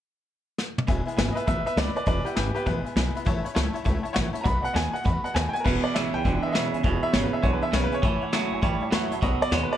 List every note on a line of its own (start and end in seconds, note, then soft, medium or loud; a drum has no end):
0.58 snare medium
0.78 mid tom medium
0.87 1.02 E1 medium
0.87 1.06 E2 medium
0.87 1.15 E2 medium
0.87 1.07 B2 medium
0.87 1.16 B2 medium
0.87 1.07 E3 medium
0.87 1.06 G#3 medium
0.87 1.05 B3 medium
0.87 1.04 E4 medium
0.87 0.99 B4 loud
0.87 0.99 E5 loud
0.87 0.99 G#5 loud
0.87 kick loud
0.87 closed hi-hat medium
1.05 1.15 E3 soft
1.05 1.16 G#3 medium
1.05 1.17 B3 medium
1.05 1.17 E4 medium
1.05 1.13 B4 medium
1.05 1.13 E5 medium
1.05 1.14 G#5 medium
1.05 muted upright bass stroke medium
1.05 closed hi-hat medium
1.17 1.32 G#1 medium
1.17 1.45 E2 medium
1.17 1.45 C#3 medium
1.17 1.36 E3 medium
1.17 1.36 G#3 medium
1.17 1.35 B3 medium
1.17 1.34 E4 medium
1.17 1.29 B4 loud
1.17 1.29 E5 loud
1.17 1.29 G#5 loud
1.17 snare loud
1.17 closed hi-hat medium
1.31 1.45 B4 medium
1.31 1.33 D#5 medium
1.36 1.46 E3 soft
1.36 1.46 G#3 soft
1.36 1.46 B3 medium
1.36 1.47 E4 medium
1.36 1.44 B4 medium
1.36 1.46 E5 medium
1.36 1.44 E5 medium
1.36 1.44 G#5 medium
1.36 muted upright bass stroke medium
1.36 closed hi-hat medium
1.47 1.62 A1 medium
1.47 1.66 E2 medium
1.47 1.75 E2 medium
1.47 1.66 B2 medium
1.47 1.75 B2 medium
1.47 1.66 E3 medium
1.47 1.65 G#3 medium
1.47 1.65 B3 medium
1.47 1.64 E4 medium
1.47 1.65 B4 medium
1.47 1.59 B4 medium
1.47 1.59 E5 medium
1.47 1.65 E5 medium
1.47 1.59 B5 medium
1.47 kick loud
1.47 closed hi-hat medium
1.65 1.75 E3 soft
1.65 1.76 G#3 soft
1.65 1.77 B3 soft
1.65 1.77 E4 soft
1.65 1.76 B4 medium
1.65 1.73 B4 medium
1.65 1.77 E5 medium
1.65 1.73 E5 medium
1.65 1.74 B5 medium
1.65 muted upright bass stroke medium
1.65 closed hi-hat medium
1.76 1.91 C#2 medium
1.76 2.05 E2 medium
1.76 2.05 C#3 medium
1.76 1.96 E3 medium
1.76 1.95 G#3 medium
1.76 1.94 B3 medium
1.76 1.93 E4 medium
1.76 1.89 B4 medium
1.76 1.94 B4 medium
1.76 1.95 D5 medium
1.76 1.89 E5 medium
1.76 1.89 B5 loud
1.76 snare loud
1.76 closed hi-hat medium
1.94 2.05 E3 soft
1.94 2.05 G#3 soft
1.94 2.05 B3 soft
1.94 2.06 E4 soft
1.94 2.05 B4 medium
1.94 2.03 B4 medium
1.94 2.06 D5 medium
1.94 2.03 E5 medium
1.94 2.03 G#5 medium
1.94 muted upright bass stroke medium
1.94 closed hi-hat medium
2.06 2.21 E1 medium
2.06 2.25 E2 medium
2.06 2.35 E2 medium
2.06 2.25 B2 medium
2.06 2.35 B2 medium
2.06 2.26 E3 medium
2.06 2.25 G#3 medium
2.06 2.24 B3 medium
2.06 2.23 E4 medium
2.06 2.24 B4 medium
2.06 2.19 B4 medium
2.06 2.26 D5 medium
2.06 2.19 E5 medium
2.06 2.19 G#5 medium
2.06 kick loud
2.06 closed hi-hat medium
2.25 2.34 E3 soft
2.25 2.35 G#3 soft
2.25 2.36 B3 soft
2.25 2.36 E4 medium
2.25 2.34 G4 medium
2.25 2.35 B4 medium
2.25 2.33 B4 medium
2.25 2.33 E5 medium
2.25 2.33 F#5 medium
2.25 muted upright bass stroke medium
2.25 closed hi-hat medium
2.35 2.51 G#1 medium
2.35 2.64 E2 medium
2.35 2.65 C#3 medium
2.35 2.55 E3 medium
2.35 2.55 G#3 medium
2.35 2.54 B3 medium
2.35 2.53 E4 medium
2.35 2.53 G4 medium
2.35 2.54 B4 medium
2.35 2.48 B4 medium
2.35 2.48 E5 medium
2.35 2.48 G#5 loud
2.35 snare loud
2.35 closed hi-hat medium
2.54 2.65 E3 soft
2.54 2.65 G#3 soft
2.54 2.66 B3 soft
2.54 2.66 E4 medium
2.54 2.65 G4 medium
2.54 2.62 B4 medium
2.54 2.65 B4 medium
2.54 2.62 E5 medium
2.54 2.63 F#5 medium
2.54 muted upright bass stroke medium
2.54 closed hi-hat medium
2.65 2.81 A1 medium
2.65 2.85 E2 medium
2.65 2.94 E2 medium
2.65 2.85 B2 medium
2.65 2.94 B2 medium
2.65 2.85 E3 medium
2.65 2.85 G#3 medium
2.65 2.84 B3 medium
2.65 2.83 E4 medium
2.65 3.53 B4 medium
2.65 2.78 B4 medium
2.65 2.78 E5 medium
2.65 2.78 G#5 medium
2.65 kick loud
2.65 closed hi-hat medium
2.85 2.95 E3 soft
2.85 2.95 G#3 soft
2.85 2.96 B3 soft
2.85 2.96 E4 soft
2.85 2.92 B4 medium
2.85 2.92 E5 medium
2.85 2.92 G#5 medium
2.85 muted upright bass stroke medium
2.85 closed hi-hat medium
2.96 3.10 B1 medium
2.96 3.24 E2 medium
2.96 3.24 C#3 loud
2.96 3.15 E3 medium
2.96 3.14 G#3 medium
2.96 3.14 B3 medium
2.96 3.13 E4 medium
2.96 3.08 B4 medium
2.96 3.09 E5 medium
2.96 3.09 G#5 medium
2.96 snare loud
2.96 closed hi-hat medium
3.14 3.24 E3 medium
3.14 3.25 G#3 medium
3.14 3.26 B3 medium
3.14 3.25 E4 medium
3.14 3.22 B4 medium
3.14 3.23 E5 medium
3.14 3.23 B5 medium
3.14 muted upright bass stroke medium
3.14 closed hi-hat medium
3.25 3.41 A1 medium
3.25 3.45 A2 medium
3.25 3.54 A2 medium
3.25 3.45 E3 medium
3.25 3.54 E3 medium
3.25 3.44 A3 medium
3.25 3.43 C#4 medium
3.25 3.42 E4 loud
3.25 3.38 C#5 loud
3.25 3.38 E5 loud
3.25 3.38 A5 loud
3.25 kick loud
3.25 closed hi-hat medium
3.43 3.54 A3 soft
3.43 3.54 C#4 medium
3.43 3.55 E4 medium
3.43 3.52 C#5 medium
3.43 3.52 E5 medium
3.43 3.52 B5 loud
3.43 muted upright bass stroke medium
3.43 closed hi-hat medium
3.54 3.70 C#2 medium
3.54 3.83 A2 medium
3.54 3.74 E3 medium
3.54 3.84 F#3 medium
3.54 3.74 A3 medium
3.54 3.73 C#4 medium
3.54 3.72 E4 medium
3.54 3.67 C#5 loud
3.54 3.67 E5 loud
3.54 3.67 A5 loud
3.54 snare loud
3.54 closed hi-hat medium
3.73 3.84 A3 soft
3.73 3.84 C#4 medium
3.73 3.85 E4 medium
3.73 3.81 C#5 medium
3.73 3.81 E5 medium
3.73 3.82 A5 medium
3.73 muted upright bass stroke medium
3.73 closed hi-hat medium
3.84 4.00 C#2 loud
3.84 4.04 A2 medium
3.84 4.12 A2 medium
3.84 4.04 E3 medium
3.84 4.13 E3 medium
3.84 4.04 A3 medium
3.84 4.03 C#4 medium
3.84 4.02 E4 medium
3.84 3.97 C#5 medium
3.84 3.97 E5 medium
3.84 3.97 A5 loud
3.84 kick medium
3.84 closed hi-hat medium
4.03 4.14 A3 soft
4.03 4.15 C#4 medium
4.03 4.15 E4 medium
4.03 4.11 C#5 medium
4.03 4.11 E5 medium
4.03 4.11 A5 medium
4.03 muted upright bass stroke medium
4.03 closed hi-hat medium
4.13 4.30 A1 loud
4.13 4.42 A2 medium
4.13 4.34 E3 medium
4.13 4.43 F#3 medium
4.13 4.34 A3 medium
4.13 4.33 C#4 medium
4.13 4.32 E4 medium
4.13 4.26 C#5 loud
4.13 4.26 E5 loud
4.13 4.26 F#5 loud
4.13 snare loud
4.13 closed hi-hat medium
4.33 4.44 A3 medium
4.33 4.45 C#4 medium
4.33 4.45 E4 medium
4.33 4.41 C#5 medium
4.33 4.41 E5 medium
4.33 4.41 A5 medium
4.33 muted upright bass stroke medium
4.33 closed hi-hat medium
4.41 4.72 B2 medium
4.41 4.64 B2 medium
4.41 4.64 D#3 medium
4.41 4.73 F#3 loud
4.41 4.56 B4 medium
4.41 4.56 D#5 medium
4.41 4.56 F#5 loud
4.41 4.44 A#5 medium
4.45 4.60 B1 medium
4.45 4.64 A3 medium
4.45 4.63 B3 medium
4.45 4.62 F#4 medium
4.45 4.64 B5 medium
4.45 kick loud
4.45 closed hi-hat medium
4.62 4.74 A3 medium
4.62 4.74 B3 soft
4.62 4.75 F#4 medium
4.62 4.70 B4 medium
4.62 4.70 D#5 medium
4.62 4.70 F#5 medium
4.62 4.75 F#5 medium
4.62 muted upright bass stroke medium
4.62 closed hi-hat medium
4.73 4.89 D#2 medium
4.73 5.03 B2 medium
4.73 4.94 D#3 medium
4.73 5.03 G#3 medium
4.73 4.94 A3 medium
4.73 4.92 B3 medium
4.73 4.91 F#4 medium
4.73 4.86 B4 medium
4.73 4.86 D#5 medium
4.73 4.94 G#5 medium
4.73 4.86 A5 loud
4.73 snare medium
4.73 closed hi-hat medium
4.92 5.03 A3 soft
4.92 5.04 B3 soft
4.92 5.04 F#4 medium
4.92 5.00 B4 medium
4.92 5.01 D#5 medium
4.92 5.04 F#5 medium
4.92 5.01 F#5 medium
4.92 muted upright bass stroke medium
4.92 closed hi-hat medium
5.03 5.20 E2 loud
5.03 5.23 B2 medium
5.03 5.33 B2 medium
5.03 5.24 D#3 medium
5.03 5.33 F#3 medium
5.03 5.24 A3 medium
5.03 5.23 B3 medium
5.03 5.21 F#4 medium
5.03 5.17 B4 medium
5.03 5.17 D#5 medium
5.03 5.17 F#5 medium
5.03 5.24 B5 medium
5.03 kick loud
5.03 closed hi-hat medium
5.22 5.34 A3 soft
5.22 5.35 B3 soft
5.22 5.34 F#4 soft
5.22 5.31 B4 medium
5.22 5.31 D#5 medium
5.22 5.35 F#5 medium
5.22 5.31 A5 medium
5.22 muted upright bass stroke medium
5.22 closed hi-hat medium
5.34 5.49 D#2 medium
5.34 5.63 B2 medium
5.34 5.53 D#3 medium
5.34 5.63 G#3 medium
5.34 5.54 A3 medium
5.34 5.53 B3 medium
5.34 5.52 F#4 medium
5.34 5.46 B4 medium
5.34 5.47 D#5 medium
5.34 5.52 G#5 medium
5.34 5.47 A5 medium
5.34 snare loud
5.34 closed hi-hat medium
5.49 5.51 G5 medium
5.53 5.65 A3 soft
5.53 5.64 B3 medium
5.53 5.64 F#4 medium
5.53 5.60 B4 medium
5.53 5.61 D#5 medium
5.53 5.61 F#5 medium
5.53 5.64 G#5 medium
5.53 muted upright bass stroke medium
5.53 closed hi-hat medium
5.60 5.63 A#4 medium
5.64 5.81 E1 medium
5.64 5.84 E2 medium
5.64 5.94 E2 medium
5.64 5.84 B2 medium
5.64 5.96 B2 medium
5.64 5.84 E3 medium
5.64 5.84 G#3 medium
5.64 5.83 B3 medium
5.64 5.83 E4 medium
5.64 5.83 B4 medium
5.64 5.77 B4 medium
5.64 5.77 E5 medium
5.64 5.77 G#5 medium
5.64 kick loud
5.64 crash loud
5.83 5.94 E3 soft
5.83 5.95 G#3 soft
5.83 5.95 B3 medium
5.83 5.95 E4 medium
5.83 5.91 B4 medium
5.83 5.94 D5 medium
5.83 5.91 E5 medium
5.83 5.91 G#5 medium
5.83 muted upright bass stroke medium
5.94 6.10 G#1 medium
5.94 6.14 E2 medium
5.94 6.23 E2 medium
5.94 6.14 B2 medium
5.94 6.23 C#3 medium
5.94 6.14 E3 medium
5.94 6.14 G#3 medium
5.94 6.13 B3 medium
5.94 6.12 E4 medium
5.94 6.06 B4 medium
5.94 6.13 E5 medium
5.94 6.07 E5 medium
5.94 6.07 G#5 medium
5.94 snare loud
5.94 closed hi-hat medium
6.13 6.22 C#2 medium
6.13 6.22 E3 soft
6.13 6.23 G#3 medium
6.13 6.24 B3 medium
6.13 6.24 E4 medium
6.13 6.21 B4 medium
6.13 6.21 E5 medium
6.13 6.43 G5 medium
6.13 6.21 G#5 medium
6.23 6.40 E1 medium
6.23 6.53 E2 medium
6.23 6.54 D3 medium
6.23 6.43 E3 medium
6.23 6.43 G#3 medium
6.23 6.43 B3 medium
6.23 6.42 E4 medium
6.23 6.36 B4 medium
6.23 6.36 E5 medium
6.23 6.37 G#5 loud
6.23 kick loud
6.23 closed hi-hat medium
6.43 6.54 E3 soft
6.43 6.54 G#3 soft
6.43 6.55 B3 medium
6.43 6.54 E4 soft
6.43 6.51 B4 medium
6.43 6.51 E5 medium
6.43 6.51 G#5 medium
6.43 muted upright bass stroke medium
6.48 6.51 D#5 medium
6.52 6.70 B1 medium
6.52 6.82 E2 medium
6.52 6.73 E2 medium
6.52 6.73 B2 medium
6.52 6.82 C#3 medium
6.52 6.74 E3 medium
6.52 6.73 G#3 medium
6.52 6.72 B3 medium
6.52 6.71 E4 medium
6.52 6.66 B4 medium
6.52 6.82 E5 medium
6.52 6.66 E5 medium
6.52 6.66 B5 medium
6.52 snare loud
6.52 closed hi-hat medium
6.72 6.82 C#2 medium
6.72 6.83 E3 soft
6.72 6.83 G#3 soft
6.72 6.83 B3 medium
6.72 6.84 E4 medium
6.72 6.80 B4 medium
6.72 6.80 E5 medium
6.72 6.80 G#5 medium
6.72 closed hi-hat medium
6.83 7.00 E1 medium
6.83 7.02 E2 medium
6.83 7.12 E2 medium
6.83 7.03 B2 medium
6.83 7.13 B2 medium
6.83 7.03 E3 medium
6.83 7.03 G#3 medium
6.83 7.02 B3 medium
6.83 7.01 E4 medium
6.83 6.96 B4 medium
6.83 6.96 E5 medium
6.83 6.96 G#5 loud
6.83 kick loud
6.83 closed hi-hat medium
7.02 7.13 E3 soft
7.02 7.13 G#3 medium
7.02 7.13 B3 medium
7.02 7.13 E4 medium
7.02 7.10 B4 medium
7.02 7.13 E5 medium
7.02 7.10 E5 medium
7.02 7.10 B5 medium
7.02 muted upright bass stroke medium
7.13 7.29 G#1 medium
7.13 7.32 E2 medium
7.13 7.41 E2 medium
7.13 7.33 B2 medium
7.13 7.41 C#3 medium
7.13 7.33 E3 medium
7.13 7.33 G#3 medium
7.13 7.32 B3 medium
7.13 7.31 E4 medium
7.13 7.25 B4 medium
7.13 7.23 C#5 medium
7.13 7.25 E5 medium
7.13 7.25 B5 medium
7.13 snare loud
7.13 closed hi-hat medium
7.23 7.33 B4 medium
7.31 7.42 E3 soft
7.31 7.42 G#3 medium
7.31 7.43 B3 medium
7.31 7.43 E4 medium
7.31 7.39 B4 medium
7.31 7.39 E5 medium
7.31 7.43 E5 medium
7.31 7.40 G#5 medium
7.31 muted upright bass stroke medium
7.42 7.59 B1 loud
7.42 7.70 E2 medium
7.42 7.72 D3 medium
7.42 7.62 E3 medium
7.42 7.62 G#3 medium
7.42 7.61 B3 medium
7.42 7.60 E4 medium
7.42 7.54 B4 medium
7.42 7.53 C#5 medium
7.42 7.54 E5 medium
7.42 7.54 G#5 loud
7.42 kick loud
7.42 closed hi-hat medium
7.53 7.63 B4 medium
7.61 7.72 E3 soft
7.61 7.72 G#3 soft
7.61 7.72 B3 soft
7.61 7.73 E4 soft
7.61 7.69 B4 medium
7.61 7.73 E5 medium
7.61 7.69 E5 medium
7.61 7.70 G#5 medium
7.61 muted upright bass stroke medium
7.71 7.88 B1 loud
7.71 8.00 E2 medium
7.71 7.92 E2 medium
7.71 7.92 B2 medium
7.71 8.00 C#3 medium
7.71 7.92 E3 medium
7.71 7.92 G#3 loud
7.71 7.91 B3 medium
7.71 7.90 E4 medium
7.71 7.84 B4 medium
7.71 7.83 C#5 medium
7.71 7.84 E5 medium
7.71 7.85 B5 medium
7.71 snare loud
7.71 closed hi-hat medium
7.84 7.93 B4 loud
7.91 8.03 E3 soft
7.91 8.04 G#3 soft
7.91 8.03 B3 medium
7.91 8.03 E4 medium
7.91 7.98 B4 medium
7.91 8.51 C#5 medium
7.91 7.99 E5 medium
7.91 7.99 G#5 medium
7.91 muted upright bass stroke medium
7.91 closed hi-hat medium
8.02 8.18 A1 medium
8.02 8.32 A2 medium
8.02 8.22 A2 medium
8.02 8.33 E3 medium
8.02 8.22 E3 medium
8.02 8.22 A3 medium
8.02 8.21 C#4 medium
8.02 8.20 E4 medium
8.02 8.15 C#5 medium
8.02 8.15 E5 medium
8.02 8.15 A5 loud
8.02 kick loud
8.02 closed hi-hat medium
8.21 8.32 A3 soft
8.21 8.32 C#4 medium
8.21 8.33 E4 medium
8.21 8.29 C#5 medium
8.21 8.29 E5 medium
8.21 8.29 F#5 medium
8.21 muted upright bass stroke medium
8.31 8.47 C#2 medium
8.31 8.51 A2 medium
8.31 8.60 A2 medium
8.31 8.52 E3 medium
8.31 8.61 F#3 loud
8.31 8.51 A3 loud
8.31 8.50 C#4 loud
8.31 8.49 E4 loud
8.31 8.45 C#5 medium
8.31 8.45 E5 medium
8.31 8.45 A5 medium
8.31 snare loud
8.31 closed hi-hat medium
8.50 8.60 F#1 medium
8.50 8.61 A3 medium
8.50 8.62 C#4 medium
8.50 8.62 E4 medium
8.50 8.59 C#5 medium
8.50 8.59 E5 medium
8.50 8.59 G#5 medium
8.61 8.78 A1 medium
8.61 8.89 A2 medium
8.61 8.81 E3 medium
8.61 8.91 G3 medium
8.61 8.81 A3 medium
8.61 8.81 C#4 medium
8.61 8.79 E4 medium
8.61 8.74 C#5 loud
8.61 8.74 E5 medium
8.61 8.75 A5 loud
8.61 kick loud
8.61 closed hi-hat medium
8.80 8.91 A3 soft
8.80 8.92 C#4 medium
8.80 8.92 E4 soft
8.80 8.88 C#5 medium
8.80 8.88 E5 medium
8.80 8.89 A5 medium
8.80 muted upright bass stroke medium
8.91 9.07 E2 medium
8.91 9.19 A2 medium
8.91 9.11 A2 medium
8.91 9.11 E3 loud
8.91 9.19 F#3 medium
8.91 9.11 A3 medium
8.91 9.11 C#4 loud
8.91 9.09 E4 loud
8.91 9.04 C#5 medium
8.91 9.04 E5 medium
8.91 9.04 B5 medium
8.91 snare loud
8.91 closed hi-hat medium
9.10 9.19 C#2 medium
9.10 9.21 A3 medium
9.10 9.22 C#4 medium
9.10 9.22 E4 medium
9.10 9.18 C#5 medium
9.10 9.18 E5 medium
9.10 9.19 A5 medium
9.10 closed hi-hat medium
9.21 9.38 B1 medium
9.21 9.50 B2 medium
9.21 9.41 B2 medium
9.21 9.41 D#3 medium
9.21 9.52 F#3 medium
9.21 9.41 A3 medium
9.21 9.41 B3 medium
9.21 9.40 F#4 medium
9.21 9.34 D#5 loud
9.21 9.34 F#5 loud
9.21 9.34 B5 loud
9.21 kick loud
9.21 closed hi-hat medium
9.41 9.52 A3 medium
9.41 9.52 B3 soft
9.41 9.52 F#4 medium
9.41 9.52 D5 loud
9.41 9.48 D#5 medium
9.41 9.48 F#5 medium
9.41 9.48 B5 medium
9.41 muted upright bass stroke medium
9.51 9.67 D#2 medium
9.51 9.77 B2 medium
9.51 9.71 B2 medium
9.51 9.71 D#3 medium
9.51 9.77 G#3 medium
9.51 9.71 A3 medium
9.51 9.70 B3 medium
9.51 9.69 F#4 medium
9.51 9.62 C#5 medium
9.51 9.63 D#5 medium
9.51 9.63 F#5 medium
9.51 9.63 B5 medium
9.51 snare loud
9.51 closed hi-hat medium
9.63 9.72 B4 medium
9.70 9.77 A3 soft
9.70 9.77 B3 medium
9.70 9.77 F#4 medium
9.70 9.77 D5 medium
9.70 9.77 D#5 medium
9.70 9.77 F#5 medium
9.70 9.77 B5 medium
9.70 muted upright bass stroke medium